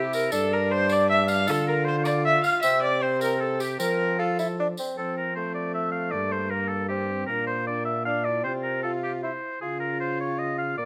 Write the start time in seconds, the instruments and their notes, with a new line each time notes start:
Already playing: trombone C3, bassoon E4, oboe G4
0.13 oboe A#4, viola A#4, tambourine
0.32 trombone G2, bassoon D4, oboe A4, viola A4, tambourine
0.53 oboe A#4, viola A#4
0.71 oboe C5, viola C5
0.89 oboe D5, viola D5, tambourine
1.09 oboe E5, viola E5
1.27 oboe F5, viola F5, tambourine
1.47 trombone D3, bassoon F4, oboe A4, viola A4, tambourine
1.67 oboe A#4, viola A#4
1.84 oboe C5, viola C5
2.04 oboe D5, viola D5, tambourine
2.25 oboe E5, viola E5
2.44 viola F5, oboe F5, tambourine
2.62 trombone C3, bassoon C4, oboe E5, viola E5, tambourine
2.83 viola D5, oboe D5
3.02 bassoon C4, oboe C5, viola C5
3.21 oboe A#4, viola A#4, tambourine
3.40 viola A4, oboe A4
3.60 viola G4, oboe G4, tambourine
3.79 trombone F3, bassoon C4, oboe A#4, viola A#4, tambourine
4.19 bassoon F4, oboe A4, viola A4
4.39 bassoon E4, tambourine
4.60 bassoon D4
4.77 bassoon C4, tambourine
4.96 trombone F3, viola C4, bassoon C4, oboe A4
5.17 oboe A#4
5.35 bassoon A3, viola C4, oboe C5
5.54 oboe D5
5.74 oboe E5
5.92 oboe F5
6.11 trombone G2, viola A#3, oboe D5
6.32 oboe C5
6.50 bassoon A#3, viola A#3, oboe A#4
6.68 oboe A4
6.88 viola A#3, bassoon C4, oboe G4
7.10 viola C4
7.26 trombone A#2, bassoon A#3, viola D4, oboe A#4
7.47 oboe C5
7.67 viola D4, oboe D5
7.85 oboe E5
8.05 bassoon D4, viola D4, oboe F5
8.24 viola E4, oboe D5
8.44 trombone C3, bassoon C4, viola F4, oboe C5
8.63 oboe A#4
8.82 bassoon F4, oboe A4
9.03 oboe G4
9.23 bassoon E4, viola E4, oboe C5
9.61 trombone C#3, viola F4, bassoon F4, oboe G#4
9.80 oboe A#4
10.00 oboe C5
10.20 oboe C#5
10.38 oboe D#5
10.58 oboe F5
10.77 trombone A#2, bassoon A#3, viola F4, oboe D5